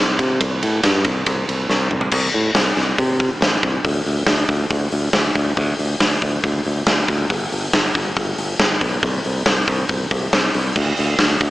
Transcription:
Already playing: C2
0.19 C3, kick, ride
0.41 C2, kick, ride
0.63 A2, ride
0.83 G2, snare, ride
1.04 C2, kick, ride
1.26 C2, kick, ride
1.49 C2, ride
1.70 C2, snare
1.91 C2, mid tom
2.01 floor tom
2.11 C2, kick, crash
2.34 A2
2.55 C2, snare, open hi-hat
2.77 C2
2.98 C3, kick, open hi-hat
3.20 kick
3.41 A1, snare, open hi-hat
3.63 C2, kick
3.85 D2, kick, open hi-hat
4.06 D2, open hi-hat
4.26 D2, snare, open hi-hat
4.48 D2, kick, open hi-hat
4.70 D2, kick, open hi-hat
4.92 D2, open hi-hat
5.13 D2, snare, open hi-hat
5.35 D2, kick, open hi-hat
5.57 D2, kick, open hi-hat
5.79 D2, open hi-hat
6.00 D2, snare, open hi-hat
6.22 D2, kick, open hi-hat
6.44 D2, kick, open hi-hat
6.65 D2, open hi-hat
6.87 D2, snare, open hi-hat
7.08 D2, kick, open hi-hat
7.30 G1, kick, open hi-hat
7.52 G1, open hi-hat
7.73 G1, snare, open hi-hat
7.95 G1, kick, open hi-hat
8.17 G1, kick, open hi-hat
8.38 G1, open hi-hat
8.59 G1, snare, open hi-hat
8.81 B1, kick, open hi-hat
9.03 C2, kick, open hi-hat
9.24 C2, open hi-hat
9.46 C2, snare, open hi-hat
9.68 C2, kick, open hi-hat
9.89 C2, kick, open hi-hat
10.11 C2, kick, open hi-hat
10.33 C2, snare, open hi-hat
10.54 C2, open hi-hat
10.76 D2, kick, crash
10.97 D2, open hi-hat
11.19 D2, snare, open hi-hat
11.40 D2, kick, open hi-hat

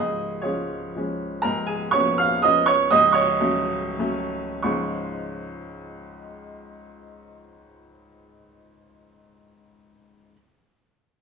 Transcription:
Already playing: C#1 C#2 G#4 D#5
0.42 F3 G#3 C#4 F4 G#4 C#5
0.95 F3 G#3 C#4
1.42 C#1 C#2 A#4 A#5
1.67 G#4 G#5
1.91 F3 B3 C#4 C#5 C#6
2.18 F5 F6
2.42 F3 B3 C#4 D#5 D#6
2.66 C#5 C#6
2.91 C#1 C#2 D#5 D#6
3.12 C#5 C#6
3.40 F#3 A3 C#4
3.99 F#3 A3 C#4
4.63 C#2 G#2 F3 G#3 C#4 F4 C#6

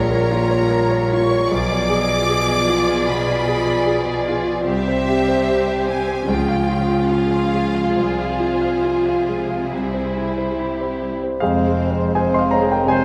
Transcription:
Already playing: A#1 A#2 G3 F4 A#4 C#5 A#5
0.11 A#4
0.31 F4
0.51 C#5
0.71 A#4
0.91 C#5
1.12 F4 C#6
1.31 C#5
1.51 B1 B2 F3 F4 G#4 D5 D6
1.71 D5
1.90 G#4
2.09 D5
2.29 G#4
2.49 D5
2.69 F4
2.88 D5
3.08 B2 B5
3.28 D5
3.48 G#4
3.67 D5
3.86 G#4
4.06 D5
4.28 F4
4.47 D5
4.67 C2 C3 G3 C4 G4 C5 E5
4.88 C5
5.08 G4
5.28 C5
5.49 G4
5.67 C5
5.88 C4 G#5
6.08 C5
6.27 C#2 C#3 F3 F4 G#4 G5
6.49 F5
6.68 F4
6.89 F5
7.07 F4 F5
7.31 F5
7.53 G#3
7.75 F5
7.96 C2 C3 C5
8.19 F5
8.39 F4
8.61 F5
8.84 F4
9.06 F5
9.28 G#3
9.50 F5
9.72 C2 G3 C4 E4
9.94 C5
10.16 E4
10.38 C5
10.58 E4 G4
10.81 C5
11.02 G3
11.23 C5
11.39 F1 F2 G#3 C4 G#4 C5 F5
11.66 G#3
11.91 C5
12.13 G#3 C4 G#4 C5 G#5
12.34 D#5 C6
12.39 F5
12.51 C#5 A#5
12.62 G#4
12.71 A#4 G5
12.85 C3 G#3 C4 C5 G#5
12.89 C5

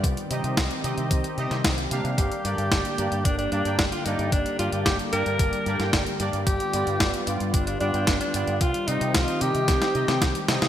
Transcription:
Already playing: G3
0.04 C2 D#3 C4 G4, kick, closed hi-hat
0.17 closed hi-hat
0.30 C3 C4 D#4 G4 D#5, closed hi-hat
0.44 C3, closed hi-hat
0.57 C2, kick, snare, closed hi-hat
0.71 closed hi-hat
0.84 C3 C4 D#4 G4 D#5, closed hi-hat
0.98 C3, closed hi-hat
1.11 C2, kick, closed hi-hat
1.24 closed hi-hat
1.38 C3 C4 D#4 G4 D#5, closed hi-hat
1.51 C3, snare, closed hi-hat
1.64 C2, kick, snare, closed hi-hat
1.78 closed hi-hat
1.91 C3 A#3 D4 G4 F5, closed hi-hat
2.04 C3, closed hi-hat
2.18 G1 D3 G3 A#3 G4, kick, closed hi-hat
2.32 closed hi-hat
2.45 G2 A#3 D4 G4 D5, closed hi-hat
2.58 G2, closed hi-hat
2.72 G1, kick, snare, closed hi-hat
2.85 closed hi-hat
2.98 G2 A#3 D4 G4 D5, closed hi-hat
3.12 G2, closed hi-hat
3.25 G1 D4, kick, closed hi-hat
3.38 D4, closed hi-hat
3.52 G2 A#3 D4 G4 D5, closed hi-hat
3.65 G2 A#3 D4 G4 G5, closed hi-hat
3.78 G1 D4, kick, snare, closed hi-hat
3.92 F4, closed hi-hat
4.05 G2 A#3 D4 D#4 G4 D5, closed hi-hat
4.19 G2, closed hi-hat
4.32 G1 D4, kick, closed hi-hat
4.46 closed hi-hat
4.59 G2 A#3 D4 F4 G4 D5, closed hi-hat
4.72 G2, closed hi-hat
4.86 G1 G4, kick, snare, closed hi-hat
4.99 closed hi-hat
5.12 G2 A#3 D4 G4 A#4 D5, closed hi-hat
5.26 G2, closed hi-hat
5.39 G1, kick, closed hi-hat
5.53 closed hi-hat
5.66 G2 A#3 D4 G4 D5, closed hi-hat
5.80 G2 A#3 D4 G4 G5, snare, closed hi-hat
5.93 G1, kick, snare, closed hi-hat
6.06 closed hi-hat
6.20 G2 A#3 D4 G4 D5, closed hi-hat
6.33 G2, closed hi-hat
6.47 G1 B3 F4 G4, kick, closed hi-hat
6.60 closed hi-hat
6.73 G2 B3 F4 G4 D5, closed hi-hat
6.87 G2, closed hi-hat
7.00 G1, kick, snare, closed hi-hat
7.14 closed hi-hat
7.27 G2 B3 F4 G4 D5, closed hi-hat
7.40 G2, closed hi-hat
7.54 G1 D4, kick, closed hi-hat
7.67 D4, closed hi-hat
7.80 G2 B3 D4 F4 G4 D5, closed hi-hat
7.94 G2 B3 F4 G4 G5, closed hi-hat
8.07 G1, kick, snare, closed hi-hat
8.21 D4, closed hi-hat
8.34 G2 B3 F4 G4 D5, closed hi-hat
8.47 G2, closed hi-hat
8.61 C2 D#3 C4 F4 G4, kick, closed hi-hat
8.74 closed hi-hat
8.88 C3 C4 D#4 G4 D#5, closed hi-hat
9.01 C3, closed hi-hat
9.14 C2 F4, kick, snare, closed hi-hat
9.28 closed hi-hat
9.41 C3 C4 D#4 G4 D#5, closed hi-hat
9.55 C3, closed hi-hat
9.68 C2, kick, snare, closed hi-hat
9.82 snare, closed hi-hat
9.95 C3 C4 D#4 G4 D#5, closed hi-hat
10.08 C3 C4 D#4 G4 G5, snare, closed hi-hat
10.22 C2, kick, snare, closed hi-hat
10.35 closed hi-hat
10.48 C3 C4 D#4 G4 D#5, snare, closed hi-hat
10.62 C3, snare, closed hi-hat

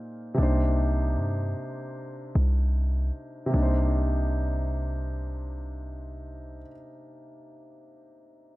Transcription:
Already playing: A#2 A#3 D#4 G#4 C5
0.34 C2 C3 A#3 D4
0.40 D#4 C5
1.17 G2
2.35 C2
3.46 C3
3.50 C2 A#3
3.54 D4
3.59 D#4 C5

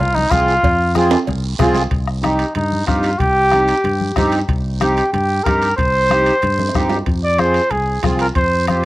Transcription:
0.00 C2 F4, cowbell, low conga, long guiro
0.15 D#4, high conga
0.30 C2 C4 F4 G#4, bombo low, bombo rim, cowbell, high conga, short guiro
0.48 short guiro
0.63 F2, bombo low, cowbell, long guiro
0.95 C4 F4 G#4, bombo rim, cowbell, high conga, short guiro
1.11 high timbale, short guiro
1.27 C2, cowbell, low conga, long guiro
1.59 C2 C4 F4 G#4, bombo low, bombo rim, cowbell, high conga, low conga, low timbale, short guiro
1.75 low timbale, short guiro
1.91 C2, bombo low, high timbale, long guiro
2.08 bombo rim
2.22 C4 D#4 G4, bombo rim, high conga, high timbale, short guiro
2.39 high timbale, short guiro
2.55 G2 D#4, low conga, high timbale, long guiro
2.73 high conga
2.86 G2 C4 D#4 F4 G4, bombo low, bombo rim, high conga, high timbale, short guiro
3.03 high timbale, short guiro
3.19 C2 G4, bombo low, low conga, high timbale, long guiro
3.51 C4 D#4 G4, bombo rim, high conga, high timbale, short guiro
3.68 high timbale, short guiro
3.84 G2, low conga, high timbale, long guiro
4.01 high conga
4.16 G2 C4 D#4 G4, bombo low, bombo rim, high conga, low conga, high timbale, low timbale, short guiro
4.32 high timbale, short guiro
4.48 C2, bombo low, high timbale, long guiro
4.80 C4 D#4 G4, bombo rim, high conga, high timbale, short guiro
4.97 high timbale, short guiro
5.13 G2 G4, low conga, high timbale, long guiro
5.44 G2 C4 D#4 G4 A#4, bombo low, bombo rim, high conga, high timbale, short guiro
5.62 high timbale, short guiro
5.77 C2 C5, bombo low, high timbale, long guiro
6.09 C4 D#4 G4, bombo rim, high conga, high timbale, short guiro
6.26 high timbale, short guiro
6.42 G2, low conga, high timbale, long guiro
6.59 high conga, high timbale
6.69 high timbale
6.74 G2 C4 D#4 G4, bombo low, bombo rim, high conga, short guiro
6.79 low timbale
6.89 low timbale, short guiro
7.06 F2, bombo low, high timbale, long guiro
7.24 D5
7.38 C4 F4 G#4 C5, bombo rim, high conga, high timbale, short guiro
7.54 high timbale, short guiro
7.70 C2 G#4, low conga, high timbale, long guiro
8.03 C2 C4 F4 G#4, bombo low, bombo rim, high conga, high timbale, low timbale, short guiro
8.19 A#4, high timbale, short guiro
8.35 F2 C5, bombo low, low conga, high timbale, long guiro
8.67 C4 F4 G4 C5, bombo rim, high conga, high timbale, short guiro

